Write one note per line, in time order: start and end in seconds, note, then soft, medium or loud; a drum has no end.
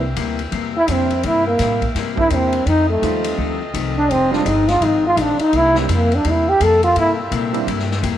0.00 0.15 C2 medium
0.00 8.18 C4 medium
0.00 2.64 G4 medium
0.00 2.64 A#4 medium
0.00 2.64 E5 medium
0.16 0.51 D2 medium
0.16 0.40 C3 medium
0.16 0.40 G3 medium
0.16 0.41 A#3 medium
0.16 0.41 E4 medium
0.16 kick soft
0.16 hi-hat pedal medium
0.16 ride medium
0.39 ride soft
0.51 0.87 E2 medium
0.51 0.75 C3 medium
0.51 0.76 G3 medium
0.51 0.76 A#3 medium
0.51 0.77 E4 medium
0.51 kick soft
0.51 ride medium
0.78 0.93 E4 loud
0.88 1.23 F2 loud
0.88 1.12 C3 medium
0.88 1.08 G3 medium
0.88 1.12 G3 medium
0.88 1.08 A#3 medium
0.88 1.12 A#3 medium
0.88 1.08 C4 medium
0.88 1.28 C4 medium
0.88 1.09 D4 medium
0.88 1.12 E4 medium
0.88 1.09 E4 medium
0.88 kick soft
0.88 hi-hat pedal medium
0.88 ride medium
1.10 ride soft
1.23 1.58 G2 medium
1.23 1.47 C3 soft
1.23 1.48 G3 soft
1.23 1.48 A#3 soft
1.23 1.48 E4 medium
1.23 1.47 E4 loud
1.23 kick soft
1.23 ride medium
1.47 1.92 A#3 medium
1.59 1.94 A2 medium
1.59 1.83 C3 medium
1.59 1.83 G3 medium
1.59 1.83 A#3 medium
1.59 1.83 E4 medium
1.59 kick soft
1.59 snare soft
1.59 hi-hat pedal medium
1.59 ride medium
1.82 kick medium
1.82 ride soft
1.95 2.30 G2 medium
1.95 2.19 C3 soft
1.95 2.19 G3 medium
1.95 2.20 A#3 medium
1.95 2.20 E4 medium
1.95 kick soft
1.95 snare soft
1.95 ride medium
2.16 2.63 G3 medium
2.16 2.63 A#3 medium
2.16 2.64 C4 medium
2.16 2.64 D4 medium
2.16 2.64 E4 medium
2.16 2.36 E4 loud
2.16 kick medium
2.30 2.65 E2 medium
2.30 2.55 C3 medium
2.30 2.55 G3 medium
2.30 2.55 A#3 medium
2.30 2.55 E4 medium
2.30 kick soft
2.30 hi-hat pedal medium
2.30 ride medium
2.34 2.68 C4 medium
2.52 ride medium
2.66 3.01 F2 medium
2.66 2.90 F2 soft
2.66 2.91 D#3 medium
2.66 2.91 A3 soft
2.66 2.91 C4 medium
2.66 2.89 D#4 loud
2.66 5.36 F4 medium
2.66 4.08 A4 medium
2.66 5.36 D#5 medium
2.66 kick soft
2.66 ride medium
2.90 3.35 A3 medium
3.01 3.37 D#2 medium
3.01 3.26 F2 medium
3.01 3.26 D#3 medium
3.01 3.56 G3 medium
3.01 3.56 A3 medium
3.01 3.26 A3 medium
3.01 3.56 C4 medium
3.01 3.26 C4 medium
3.01 3.56 D#4 medium
3.01 3.57 F4 medium
3.01 kick soft
3.01 hi-hat pedal medium
3.01 ride medium
3.24 ride medium
3.37 3.73 D2 medium
3.37 3.61 F2 medium
3.37 3.61 D#3 medium
3.37 3.62 A3 medium
3.37 3.62 C4 medium
3.37 kick soft
3.74 4.08 C2 medium
3.74 3.98 F2 medium
3.74 3.98 D#3 medium
3.74 3.98 A3 medium
3.74 3.98 C4 medium
3.74 kick soft
3.74 hi-hat pedal medium
3.74 ride medium
3.97 4.13 D4 loud
4.09 4.44 F1 medium
4.09 4.33 F2 soft
4.09 4.33 D#3 medium
4.09 4.34 G#3 medium
4.09 4.34 C4 soft
4.09 4.32 C4 loud
4.09 5.36 G#4 medium
4.09 kick soft
4.09 ride medium
4.31 4.43 G3 medium
4.31 4.44 G#3 medium
4.31 4.44 C4 medium
4.31 4.48 D4 medium
4.31 4.44 D#4 medium
4.31 4.44 F4 medium
4.31 snare soft
4.44 4.80 G1 loud
4.44 4.68 F2 medium
4.44 4.69 D#3 medium
4.44 4.69 G#3 medium
4.44 4.69 C4 medium
4.44 4.70 D#4 medium
4.44 kick soft
4.44 hi-hat pedal soft
4.44 ride medium
4.68 4.85 F4 loud
4.68 snare soft
4.68 ride soft
4.81 5.16 G#1 medium
4.81 5.05 F2 soft
4.81 5.05 D#3 medium
4.81 5.06 G#3 soft
4.81 5.06 C4 medium
4.81 5.04 D#4 medium
4.81 kick soft
4.81 ride medium
5.07 5.22 F4 loud
5.16 5.37 A#1 medium
5.16 5.40 F2 medium
5.16 5.40 D#3 medium
5.16 5.40 G#3 medium
5.16 5.41 C4 medium
5.16 kick soft
5.16 hi-hat pedal medium
5.16 ride medium
5.20 5.40 D4 medium
5.39 5.58 D#4 loud
5.39 muted upright bass stroke soft
5.39 ride medium
5.52 5.87 C2 medium
5.52 5.76 C3 soft
5.52 5.76 G3 medium
5.52 5.77 A#3 medium
5.52 5.77 E4 medium
5.52 8.18 G4 medium
5.52 8.18 A#4 medium
5.52 8.18 E5 medium
5.52 kick soft
5.52 ride medium
5.56 5.77 E4 loud
5.73 5.86 G3 medium
5.73 5.87 A#3 medium
5.73 5.87 C4 medium
5.73 5.87 D4 medium
5.73 5.87 E4 medium
5.73 snare medium
5.79 5.95 G3 medium
5.89 6.23 F2 medium
5.89 6.12 C3 medium
5.89 6.13 G3 medium
5.89 6.13 A#3 medium
5.89 6.13 E4 medium
5.89 kick soft
5.89 hi-hat pedal medium
5.89 ride medium
5.95 6.16 A#3 medium
6.12 6.31 D4 medium
6.12 ride soft
6.24 6.59 E2 medium
6.24 6.48 C3 medium
6.24 6.48 G3 medium
6.24 6.48 A#3 medium
6.24 6.49 E4 medium
6.24 kick soft
6.24 ride medium
6.30 6.50 E4 medium
6.49 6.65 G4 loud
6.60 6.94 F2 medium
6.60 6.84 C3 medium
6.60 6.84 G3 medium
6.60 6.84 A#3 medium
6.60 6.84 E4 medium
6.60 6.84 A4 loud
6.60 kick soft
6.60 hi-hat pedal medium
6.60 ride medium
6.83 6.95 F4 loud
6.83 ride medium
6.96 7.30 G2 medium
6.96 7.20 C3 soft
6.96 7.20 G3 soft
6.96 7.20 A#3 medium
6.96 7.20 E4 medium
6.96 7.11 E4 loud
6.96 kick soft
6.96 ride medium
7.31 7.66 A#2 medium
7.31 7.55 C3 medium
7.31 7.55 G3 medium
7.31 7.55 A#3 medium
7.31 7.55 E4 medium
7.31 kick soft
7.31 hi-hat pedal medium
7.31 ride medium
7.53 7.65 G3 medium
7.53 7.65 A#3 medium
7.53 7.65 C4 medium
7.53 7.65 D4 medium
7.53 7.66 E4 medium
7.53 ride soft
7.67 8.01 G2 medium
7.67 7.90 C3 medium
7.67 7.91 G3 medium
7.67 7.91 A#3 medium
7.67 7.91 E4 medium
7.67 kick soft
7.67 ride medium
7.79 snare soft
7.91 snare soft
8.01 8.18 E2 loud
8.01 8.18 C3 medium
8.01 8.18 G3 medium
8.01 8.18 A#3 medium
8.01 8.18 E4 medium
8.01 kick soft
8.01 hi-hat pedal medium
8.01 ride medium